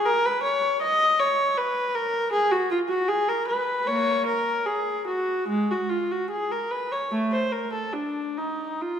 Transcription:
0, 0, Header, 1, 2, 480
1, 0, Start_track
1, 0, Tempo, 757576
1, 1483, Time_signature, 4, 2, 24, 8
1, 1965, Tempo, 786370
1, 2925, Tempo, 819672
1, 4845, Tempo, 868307
1, 5422, End_track
2, 0, Start_track
2, 0, Title_t, "Viola"
2, 0, Program_c, 0, 41
2, 34, Note_on_c, 0, 70, 99
2, 159, Note_off_c, 0, 70, 0
2, 162, Note_on_c, 0, 71, 88
2, 272, Note_on_c, 0, 73, 82
2, 282, Note_off_c, 0, 71, 0
2, 510, Note_off_c, 0, 73, 0
2, 518, Note_on_c, 0, 75, 103
2, 754, Note_off_c, 0, 75, 0
2, 755, Note_on_c, 0, 73, 91
2, 997, Note_on_c, 0, 71, 90
2, 998, Note_off_c, 0, 73, 0
2, 1235, Note_on_c, 0, 70, 92
2, 1239, Note_off_c, 0, 71, 0
2, 1471, Note_on_c, 0, 68, 101
2, 1479, Note_off_c, 0, 70, 0
2, 1592, Note_on_c, 0, 66, 87
2, 1595, Note_off_c, 0, 68, 0
2, 1715, Note_on_c, 0, 65, 82
2, 1718, Note_off_c, 0, 66, 0
2, 1765, Note_off_c, 0, 65, 0
2, 1829, Note_on_c, 0, 66, 84
2, 1953, Note_on_c, 0, 68, 94
2, 1955, Note_off_c, 0, 66, 0
2, 2076, Note_off_c, 0, 68, 0
2, 2077, Note_on_c, 0, 70, 87
2, 2194, Note_on_c, 0, 71, 83
2, 2197, Note_off_c, 0, 70, 0
2, 2431, Note_off_c, 0, 71, 0
2, 2433, Note_on_c, 0, 58, 76
2, 2434, Note_on_c, 0, 73, 95
2, 2661, Note_off_c, 0, 58, 0
2, 2672, Note_on_c, 0, 70, 87
2, 2679, Note_off_c, 0, 73, 0
2, 2914, Note_on_c, 0, 68, 77
2, 2915, Note_off_c, 0, 70, 0
2, 3158, Note_off_c, 0, 68, 0
2, 3158, Note_on_c, 0, 66, 78
2, 3398, Note_on_c, 0, 56, 91
2, 3404, Note_off_c, 0, 66, 0
2, 3527, Note_off_c, 0, 56, 0
2, 3532, Note_on_c, 0, 66, 77
2, 3640, Note_on_c, 0, 65, 73
2, 3654, Note_off_c, 0, 66, 0
2, 3765, Note_off_c, 0, 65, 0
2, 3767, Note_on_c, 0, 66, 75
2, 3879, Note_on_c, 0, 68, 82
2, 3886, Note_off_c, 0, 66, 0
2, 3998, Note_off_c, 0, 68, 0
2, 4003, Note_on_c, 0, 70, 76
2, 4117, Note_on_c, 0, 71, 76
2, 4121, Note_off_c, 0, 70, 0
2, 4238, Note_off_c, 0, 71, 0
2, 4239, Note_on_c, 0, 73, 68
2, 4355, Note_on_c, 0, 57, 87
2, 4359, Note_off_c, 0, 73, 0
2, 4473, Note_on_c, 0, 72, 72
2, 4475, Note_off_c, 0, 57, 0
2, 4592, Note_on_c, 0, 70, 75
2, 4594, Note_off_c, 0, 72, 0
2, 4713, Note_on_c, 0, 69, 75
2, 4717, Note_off_c, 0, 70, 0
2, 4831, Note_on_c, 0, 62, 69
2, 4837, Note_off_c, 0, 69, 0
2, 5073, Note_off_c, 0, 62, 0
2, 5077, Note_on_c, 0, 63, 62
2, 5320, Note_off_c, 0, 63, 0
2, 5320, Note_on_c, 0, 65, 82
2, 5422, Note_off_c, 0, 65, 0
2, 5422, End_track
0, 0, End_of_file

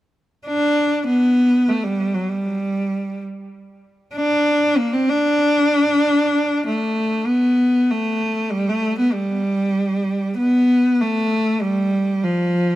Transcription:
0, 0, Header, 1, 2, 480
1, 0, Start_track
1, 0, Key_signature, 1, "major"
1, 0, Tempo, 619835
1, 1289, Time_signature, 3, 2, 24, 8
1, 9877, End_track
2, 0, Start_track
2, 0, Title_t, "Cello"
2, 0, Program_c, 0, 42
2, 364, Note_on_c, 0, 62, 57
2, 796, Note_off_c, 0, 62, 0
2, 828, Note_on_c, 0, 59, 60
2, 1305, Note_on_c, 0, 57, 52
2, 1317, Note_off_c, 0, 59, 0
2, 1424, Note_on_c, 0, 55, 52
2, 1436, Note_off_c, 0, 57, 0
2, 1660, Note_on_c, 0, 54, 45
2, 1671, Note_off_c, 0, 55, 0
2, 1774, Note_on_c, 0, 55, 45
2, 1786, Note_off_c, 0, 54, 0
2, 2490, Note_off_c, 0, 55, 0
2, 3215, Note_on_c, 0, 62, 61
2, 3699, Note_on_c, 0, 58, 58
2, 3710, Note_off_c, 0, 62, 0
2, 3817, Note_on_c, 0, 60, 54
2, 3828, Note_off_c, 0, 58, 0
2, 3945, Note_on_c, 0, 62, 73
2, 3957, Note_off_c, 0, 60, 0
2, 5139, Note_off_c, 0, 62, 0
2, 5166, Note_on_c, 0, 57, 55
2, 5628, Note_on_c, 0, 59, 52
2, 5640, Note_off_c, 0, 57, 0
2, 6121, Note_on_c, 0, 57, 51
2, 6132, Note_off_c, 0, 59, 0
2, 6591, Note_on_c, 0, 55, 58
2, 6603, Note_off_c, 0, 57, 0
2, 6728, Note_on_c, 0, 57, 58
2, 6740, Note_off_c, 0, 55, 0
2, 6951, Note_off_c, 0, 57, 0
2, 6963, Note_on_c, 0, 59, 53
2, 7070, Note_on_c, 0, 55, 53
2, 7082, Note_off_c, 0, 59, 0
2, 8019, Note_off_c, 0, 55, 0
2, 8034, Note_on_c, 0, 59, 68
2, 8526, Note_on_c, 0, 57, 63
2, 8538, Note_off_c, 0, 59, 0
2, 8994, Note_on_c, 0, 55, 56
2, 9006, Note_off_c, 0, 57, 0
2, 9481, Note_on_c, 0, 53, 58
2, 9493, Note_off_c, 0, 55, 0
2, 9877, Note_off_c, 0, 53, 0
2, 9877, End_track
0, 0, End_of_file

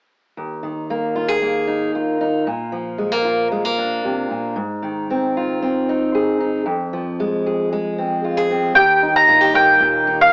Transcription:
0, 0, Header, 1, 4, 480
1, 0, Start_track
1, 0, Key_signature, -3, "major"
1, 0, Tempo, 524017
1, 344, Time_signature, 4, 2, 24, 8
1, 9461, End_track
2, 0, Start_track
2, 0, Title_t, "Mandolin"
2, 0, Program_c, 0, 25
2, 8017, Note_on_c, 0, 79, 82
2, 8387, Note_off_c, 0, 79, 0
2, 8391, Note_on_c, 0, 82, 91
2, 8746, Note_off_c, 0, 82, 0
2, 8750, Note_on_c, 0, 79, 83
2, 9352, Note_off_c, 0, 79, 0
2, 9355, Note_on_c, 0, 77, 72
2, 9461, Note_off_c, 0, 77, 0
2, 9461, End_track
3, 0, Start_track
3, 0, Title_t, "Steel-string acoustic guitar"
3, 0, Program_c, 1, 25
3, 341, Note_on_c, 1, 39, 52
3, 577, Note_on_c, 1, 51, 42
3, 827, Note_on_c, 1, 58, 43
3, 1059, Note_on_c, 1, 65, 44
3, 1177, Note_off_c, 1, 65, 0
3, 1177, Note_on_c, 1, 68, 36
3, 1294, Note_off_c, 1, 58, 0
3, 1298, Note_on_c, 1, 58, 47
3, 1534, Note_on_c, 1, 63, 43
3, 1782, Note_off_c, 1, 68, 0
3, 1785, Note_on_c, 1, 65, 43
3, 2012, Note_off_c, 1, 63, 0
3, 2023, Note_on_c, 1, 63, 44
3, 2234, Note_off_c, 1, 58, 0
3, 2236, Note_off_c, 1, 63, 0
3, 2262, Note_on_c, 1, 46, 56
3, 2263, Note_off_c, 1, 51, 0
3, 2265, Note_off_c, 1, 39, 0
3, 2493, Note_on_c, 1, 53, 44
3, 2733, Note_on_c, 1, 56, 42
3, 2855, Note_off_c, 1, 56, 0
3, 2855, Note_on_c, 1, 58, 41
3, 2965, Note_off_c, 1, 65, 0
3, 2976, Note_on_c, 1, 65, 42
3, 3217, Note_off_c, 1, 58, 0
3, 3220, Note_on_c, 1, 56, 47
3, 3341, Note_off_c, 1, 56, 0
3, 3341, Note_on_c, 1, 58, 40
3, 3462, Note_on_c, 1, 62, 47
3, 3702, Note_off_c, 1, 46, 0
3, 3705, Note_on_c, 1, 48, 47
3, 3938, Note_off_c, 1, 48, 0
3, 3941, Note_on_c, 1, 46, 49
3, 4152, Note_off_c, 1, 53, 0
3, 4156, Note_off_c, 1, 62, 0
3, 4175, Note_on_c, 1, 44, 62
3, 4182, Note_off_c, 1, 65, 0
3, 4184, Note_off_c, 1, 46, 0
3, 4184, Note_off_c, 1, 58, 0
3, 4418, Note_on_c, 1, 51, 45
3, 4676, Note_on_c, 1, 60, 47
3, 4917, Note_on_c, 1, 65, 44
3, 5147, Note_off_c, 1, 60, 0
3, 5151, Note_on_c, 1, 60, 53
3, 5396, Note_on_c, 1, 63, 47
3, 5627, Note_off_c, 1, 65, 0
3, 5631, Note_on_c, 1, 68, 49
3, 5856, Note_off_c, 1, 63, 0
3, 5867, Note_on_c, 1, 63, 49
3, 6072, Note_off_c, 1, 44, 0
3, 6078, Note_off_c, 1, 63, 0
3, 6080, Note_off_c, 1, 60, 0
3, 6080, Note_off_c, 1, 68, 0
3, 6098, Note_on_c, 1, 41, 64
3, 6102, Note_off_c, 1, 51, 0
3, 6349, Note_on_c, 1, 53, 48
3, 6594, Note_on_c, 1, 56, 49
3, 6837, Note_on_c, 1, 68, 46
3, 7066, Note_off_c, 1, 56, 0
3, 7077, Note_on_c, 1, 56, 54
3, 7312, Note_on_c, 1, 60, 47
3, 7548, Note_off_c, 1, 68, 0
3, 7551, Note_on_c, 1, 65, 49
3, 7668, Note_off_c, 1, 65, 0
3, 7668, Note_on_c, 1, 68, 43
3, 7780, Note_off_c, 1, 60, 0
3, 7791, Note_on_c, 1, 60, 49
3, 7991, Note_off_c, 1, 41, 0
3, 7996, Note_off_c, 1, 53, 0
3, 8019, Note_on_c, 1, 39, 63
3, 8022, Note_off_c, 1, 68, 0
3, 8026, Note_on_c, 1, 67, 58
3, 8027, Note_off_c, 1, 60, 0
3, 8029, Note_off_c, 1, 56, 0
3, 8269, Note_on_c, 1, 63, 46
3, 8501, Note_off_c, 1, 67, 0
3, 8501, Note_on_c, 1, 51, 53
3, 8504, Note_on_c, 1, 65, 52
3, 8616, Note_off_c, 1, 65, 0
3, 8616, Note_on_c, 1, 67, 45
3, 8737, Note_on_c, 1, 58, 48
3, 8984, Note_on_c, 1, 46, 57
3, 9215, Note_off_c, 1, 63, 0
3, 9226, Note_on_c, 1, 63, 50
3, 9449, Note_off_c, 1, 51, 0
3, 9452, Note_off_c, 1, 67, 0
3, 9461, Note_off_c, 1, 39, 0
3, 9461, Note_off_c, 1, 46, 0
3, 9461, Note_off_c, 1, 58, 0
3, 9461, Note_off_c, 1, 63, 0
3, 9461, End_track
4, 0, Start_track
4, 0, Title_t, "Upright bass"
4, 0, Program_c, 2, 32
4, 8023, Note_on_c, 2, 39, 76
4, 8432, Note_off_c, 2, 39, 0
4, 8501, Note_on_c, 2, 43, 73
4, 8910, Note_off_c, 2, 43, 0
4, 8981, Note_on_c, 2, 39, 79
4, 9389, Note_off_c, 2, 39, 0
4, 9461, End_track
0, 0, End_of_file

